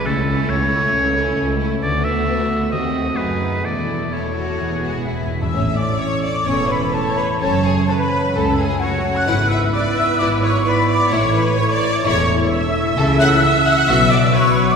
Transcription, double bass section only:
\new Staff \with { instrumentName = "Double bass section" } { \clef bass \time 4/4 \key a \major \tempo 4 = 130 cis,4 cis,4 cis,4 cis,4 | d,2 dis,4 fis,,4 | e,,2 e,,4. r8 | a,,4 r4 e,,4 r4 |
fis,,4 r4 cis,4 r4 | gis,,4 r4 gis,,4 r4 | a,,4 r4 e,,4 r4 | \key a \mixolydian cis,4 r4 b,,4 r4 | }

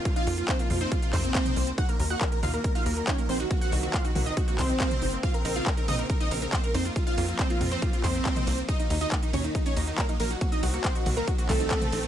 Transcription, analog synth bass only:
\new Staff \with { instrumentName = "Analog synth bass" } { \clef bass \time 4/4 \key ees \dorian \tempo 4 = 139 r8 f,8 r8 f,8 r8 f,8 r8 c,8 | r8 ees,8 r8 ees,8 r8 ees,8 r8 bes,,8 | r8 c,8 r8 c,8 r8 c,8 r8 ges,,8 | r8 bes,,8 r8 bes,,8 r8 bes,,8 r8 f,8 |
r8 f,8 r8 f,8 r8 f,8 r8 c,8 | r8 ees,8 r8 ees,8 r8 ees,8 r8 bes,,8 | r8 c,8 r8 c,8 r8 c,8 r8 bes,,8 | }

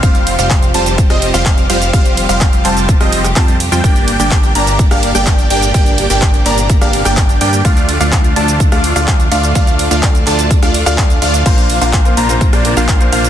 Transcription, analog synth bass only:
\new Staff \with { instrumentName = "Analog synth bass" } { \clef bass \time 4/4 \key g \minor \tempo 4 = 126 f,,8. f,,8. f,,8. f,,8 f,,8. f,,8 | f,,8. f,,8. f,,8. f,,8. f,8. f,16 | g,,8. g,,8. g,,8. g,,8 g,,8. g,,8 | g,,8. g,,8. g,,8. g,,8 g,,8. g,8 |
d,8. d,8. d,8. d,8 d,8. d,8 | d,8. d,8. d,8. d,8 d,8. d,8 | bes,,8. bes,,8. bes,,8. bes,,8 bes,,8. bes,,8 | }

